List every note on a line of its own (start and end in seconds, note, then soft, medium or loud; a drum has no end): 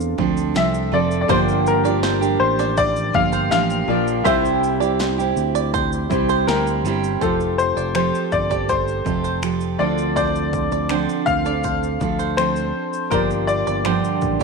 0.00 0.15 E2 medium
0.00 0.18 C4 soft
0.00 0.87 C4 medium
0.00 0.20 D4 medium
0.00 0.88 D4 medium
0.00 0.88 F4 medium
0.00 0.18 A4 medium
0.00 0.89 A4 medium
0.00 0.89 D5 medium
0.00 0.15 F5 loud
0.00 shaker medium
0.18 0.53 D2 medium
0.18 0.53 F3 medium
0.18 0.55 C4 medium
0.18 0.55 D4 medium
0.18 0.56 A4 medium
0.18 kick medium
0.37 shaker medium
0.54 0.90 C2 loud
0.54 0.90 F3 medium
0.54 0.92 C4 medium
0.54 0.92 D4 medium
0.54 0.93 A4 medium
0.54 0.94 E5 medium
0.54 snare loud
0.54 shaker medium
0.74 shaker soft
0.92 1.26 F1 medium
0.92 1.28 F3 medium
0.92 1.29 C4 medium
0.92 1.29 D4 medium
0.92 1.30 A4 medium
0.92 1.20 D5 medium
1.11 shaker soft
1.21 1.29 D5 medium
1.28 2.36 G1 loud
1.28 1.84 G2 medium
1.28 1.85 D3 medium
1.28 1.85 F3 medium
1.28 3.83 A#3 medium
1.28 1.84 A#3 medium
1.28 3.84 D4 medium
1.28 1.83 D4 medium
1.28 3.84 F4 medium
1.28 1.82 G4 loud
1.28 3.85 G4 medium
1.28 1.47 C5 loud
1.28 1.38 C5 medium
1.28 kick loud
1.28 shaker medium
1.32 3.85 D5 medium
1.48 shaker medium
1.67 2.43 A#4 medium
1.67 shaker medium
1.84 2.23 F3 soft
1.84 2.22 A#3 soft
1.84 2.21 D4 soft
1.84 2.20 G4 medium
1.84 2.03 D5 medium
1.84 shaker soft
2.03 2.21 C5 medium
2.03 snare loud
2.03 shaker medium
2.21 3.12 F3 soft
2.21 3.13 A#3 medium
2.21 3.14 D4 medium
2.21 3.15 G4 medium
2.21 shaker medium
2.40 3.10 A1 medium
2.40 2.78 C5 medium
2.59 2.77 D5 medium
2.59 snare soft
2.59 shaker soft
2.77 2.95 C5 medium
2.77 3.16 D5 loud
2.77 kick medium
2.77 shaker medium
2.96 shaker medium
3.13 3.48 G1 loud
3.13 3.49 F3 medium
3.13 3.50 A#3 medium
3.13 3.51 D4 medium
3.13 3.52 G4 medium
3.13 3.49 F5 loud
3.13 kick medium
3.33 3.50 C5 medium
3.33 shaker medium
3.51 3.85 A1 loud
3.51 3.86 F3 medium
3.51 3.88 A#3 medium
3.51 3.88 D4 medium
3.51 3.89 G4 medium
3.51 4.27 F5 loud
3.51 snare loud
3.51 shaker medium
3.70 shaker soft
3.87 4.22 A#1 medium
3.87 4.25 F3 medium
3.87 4.25 A#3 soft
3.87 4.26 A#3 medium
3.87 4.25 D4 soft
3.87 4.26 D4 medium
3.87 4.25 F4 soft
3.87 4.24 G4 soft
3.87 4.26 G4 medium
3.87 4.26 D5 medium
4.08 shaker soft
4.24 5.32 C2 loud
4.24 4.81 C3 medium
4.24 4.81 G3 medium
4.24 4.81 C4 medium
4.24 6.06 E4 medium
4.24 4.81 E4 loud
4.24 6.07 G4 medium
4.24 4.79 G4 medium
4.24 4.43 C5 loud
4.24 6.07 C5 medium
4.24 4.95 E5 medium
4.24 kick loud
4.24 shaker medium
4.45 shaker medium
4.64 shaker medium
4.80 5.19 C4 soft
4.80 5.18 E4 medium
4.80 5.17 G4 medium
4.80 4.99 D5 medium
4.80 shaker soft
4.99 5.17 C5 medium
4.99 snare loud
4.99 shaker medium
5.18 6.11 C4 medium
5.18 6.11 E4 medium
5.18 6.13 G4 medium
5.18 shaker medium
5.36 6.06 D2 medium
5.36 shaker medium
5.55 5.72 D5 medium
5.55 shaker medium
5.74 5.91 C5 medium
5.74 kick medium
5.74 shaker medium
5.92 shaker medium
6.10 6.45 C2 medium
6.10 6.46 G3 medium
6.10 6.47 C4 medium
6.10 7.21 E4 medium
6.10 6.48 E4 medium
6.10 7.21 G4 medium
6.10 6.49 G4 medium
6.10 7.22 C5 medium
6.10 kick medium
6.10 shaker medium
6.29 6.47 C5 medium
6.29 shaker medium
6.47 6.81 D2 medium
6.47 6.84 G3 medium
6.47 6.85 C4 medium
6.47 6.85 E4 medium
6.47 6.85 G4 medium
6.47 7.23 A#4 medium
6.47 snare loud
6.47 shaker medium
6.67 shaker soft
6.84 7.18 G1 medium
6.84 7.21 G3 medium
6.84 7.21 C4 medium
6.84 7.22 E4 medium
6.84 7.22 G4 medium
6.84 shaker medium
7.04 shaker soft
7.20 7.73 F1 medium
7.20 7.94 F3 medium
7.20 9.75 A3 medium
7.20 7.95 C4 medium
7.20 9.76 F4 medium
7.20 9.76 G4 medium
7.20 7.95 G4 medium
7.20 7.60 A4 medium
7.20 7.39 C5 medium
7.20 kick medium
7.20 shaker medium
7.24 7.96 A4 medium
7.24 9.77 C5 medium
7.40 shaker soft
7.58 7.94 C5 medium
7.58 shaker medium
7.77 8.11 F1 medium
7.77 7.95 D5 medium
7.77 shaker soft
7.95 8.50 F3 medium
7.95 8.50 C4 medium
7.95 8.50 G4 medium
7.95 8.49 A4 medium
7.95 8.13 C5 medium
7.95 8.33 C5 medium
7.95 finger snap loud
7.95 shaker soft
8.15 shaker soft
8.32 9.02 G1 medium
8.32 8.70 D5 medium
8.32 kick medium
8.32 shaker soft
8.50 9.04 C4 soft
8.50 9.05 G4 soft
8.50 9.05 A4 soft
8.50 8.69 D5 medium
8.50 kick medium
8.50 shaker soft
8.69 8.86 C5 medium
8.69 9.39 C5 medium
8.69 kick medium
8.69 shaker medium
8.88 shaker soft
9.05 9.76 F1 medium
9.05 9.41 F3 medium
9.05 9.42 C4 medium
9.05 9.43 G4 soft
9.05 9.43 A4 medium
9.05 kick medium
9.05 shaker medium
9.24 9.42 C5 medium
9.24 shaker medium
9.42 9.78 F3 soft
9.42 9.79 C4 medium
9.42 9.80 G4 medium
9.42 9.79 A4 medium
9.42 finger snap loud
9.42 shaker medium
9.61 shaker soft
9.78 10.68 D2 medium
9.78 10.89 D3 medium
9.78 10.90 F3 medium
9.78 12.70 C4 medium
9.78 10.90 C4 medium
9.78 10.91 D4 medium
9.78 12.71 F4 medium
9.78 10.91 A4 medium
9.78 12.71 A4 medium
9.78 10.14 D5 medium
9.78 12.72 D5 medium
9.98 shaker soft
10.16 10.34 C5 medium
10.16 11.30 D5 medium
10.16 kick medium
10.16 shaker medium
10.35 shaker soft
10.53 kick medium
10.53 shaker medium
10.72 11.06 D2 medium
10.72 10.90 D5 medium
10.72 shaker soft
10.89 11.45 D3 medium
10.89 11.46 F3 medium
10.89 11.46 C4 medium
10.89 11.45 D4 medium
10.89 11.43 A4 medium
10.89 11.08 C5 medium
10.89 finger snap loud
10.89 shaker soft
11.09 shaker soft
11.26 11.97 D2 medium
11.26 12.41 F5 loud
11.26 kick medium
11.26 shaker medium
11.45 12.00 C4 soft
11.45 12.00 D4 soft
11.45 12.00 A4 soft
11.45 11.64 D5 medium
11.45 shaker soft
11.64 11.82 C5 medium
11.64 kick medium
11.64 shaker medium
11.83 shaker soft
12.00 12.71 D2 medium
12.00 12.35 F3 medium
12.00 12.36 C4 medium
12.00 12.37 D4 medium
12.00 12.38 A4 medium
12.00 kick medium
12.00 shaker soft
12.19 12.37 C5 medium
12.19 shaker medium
12.37 13.10 F3 medium
12.37 13.11 C4 medium
12.37 13.12 D4 medium
12.37 13.12 A4 medium
12.37 13.14 C5 medium
12.37 finger snap loud
12.37 shaker medium
12.56 shaker soft
12.93 shaker soft
13.10 13.63 G1 medium
13.10 13.84 F3 medium
13.10 14.44 A#3 medium
13.10 13.84 A#3 medium
13.10 13.85 D4 medium
13.10 14.44 F4 medium
13.10 14.44 G4 medium
13.10 13.86 G4 medium
13.10 13.19 A#4 medium
13.10 13.29 C5 medium
13.10 14.44 D5 medium
13.10 kick loud
13.10 shaker medium
13.31 shaker soft
13.47 14.44 D5 loud
13.47 shaker medium
13.67 14.01 G1 medium
13.67 13.85 D5 medium
13.67 shaker soft
13.84 14.40 G2 medium
13.84 14.41 D3 medium
13.84 14.41 F3 medium
13.84 14.40 A#3 medium
13.84 14.39 D4 medium
13.84 14.38 G4 medium
13.84 14.03 C5 medium
13.84 finger snap loud
13.84 shaker medium
14.04 shaker soft
14.21 14.44 A1 medium
14.21 kick medium
14.21 shaker soft
14.39 14.44 D4 medium
14.39 14.44 G4 medium
14.39 shaker medium